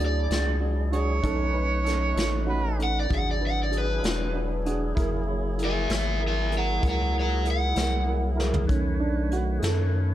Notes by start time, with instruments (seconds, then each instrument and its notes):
Already playing: analog synth bass D2, tonewheel organ F#3 D4 E4 G#4, grand piano D4
0.00 grand piano F#4 G#4, closed hi-hat
0.05 overdriven electric guitar D5
0.30 analog synth bass C#2, grand piano D4 F#4 G#4, snare, closed hi-hat
0.60 grand piano D4 F#4 G#4
0.91 grand piano D4 F#4 G#4, harmonica C#5, closed hi-hat
1.22 analog synth bass B1, tonewheel organ A3 C#4 D#4 B4, grand piano C#4 D#4 A4, kick, closed hi-hat
1.52 grand piano C#4 D#4 B4
1.83 grand piano C#4 D#4 A4, closed hi-hat
1.88 snare
2.14 analog synth bass A1, grand piano C#4 D#4 A4, closed hi-hat
2.19 snare
2.45 grand piano C#4 D#4 F#4
2.49 harmonica B4
2.77 grand piano C#4 D#4 A4, closed hi-hat
2.84 overdriven electric guitar F#5
3.00 overdriven electric guitar D5
3.08 analog synth bass G#1, tonewheel organ F#3 D4 E4 G#4, grand piano D4 F#4 G#4, kick, closed hi-hat
3.15 overdriven electric guitar F#5
3.31 overdriven electric guitar D5
3.40 grand piano D4 F#4 B4
3.47 overdriven electric guitar F#5
3.63 overdriven electric guitar D5
3.70 grand piano D4 F#4 G#4, closed hi-hat
3.78 overdriven electric guitar B4
4.02 analog synth bass E1, grand piano D4 F#4 B4, snare, closed hi-hat
4.33 grand piano D4 F#4 B4
4.65 grand piano D4 F#4 G#4, closed hi-hat
4.95 analog synth bass F#1, tonewheel organ F#3 A#3 E4 G#4, grand piano E4 G#4 A#4, kick, closed hi-hat
5.26 grand piano E4 G#4 C#5
5.57 grand piano E4 G#4 A#4, closed hi-hat
5.64 overdriven electric guitar G#4 E5
5.88 analog synth bass G#1, grand piano E4 G#4 C#5, snare, closed hi-hat
5.94 overdriven electric guitar G#4 E5
6.18 grand piano E4 G#4 A#4
6.28 overdriven electric guitar G#4 E5
6.50 grand piano E4 G#4 A#4, closed hi-hat
6.58 overdriven electric guitar C#5 F#5
6.80 analog synth bass C#2, grand piano E4 G#4 A#4, kick, closed hi-hat
6.88 overdriven electric guitar C#5 F#5
7.12 grand piano E4 G#4 A#4
7.20 overdriven electric guitar C#5 F#5
7.43 grand piano E4 G#4 A#4, closed hi-hat
7.51 overdriven electric guitar F#5
7.74 analog synth bass C2, grand piano E4 G#4 A#4, snare, closed hi-hat
8.04 grand piano E4 G#4 A#4
8.35 grand piano E4 G#4 A#4
8.40 snare
8.54 floor tom
8.66 analog synth bass B1, tonewheel organ D#3 A3 B4 C#5, grand piano D#3 A3 C#4, kick, closed hi-hat
9.00 grand piano D4
9.32 grand piano F#4, closed hi-hat
9.59 analog synth bass F#2, grand piano G#4, closed hi-hat
9.64 grand piano A4, snare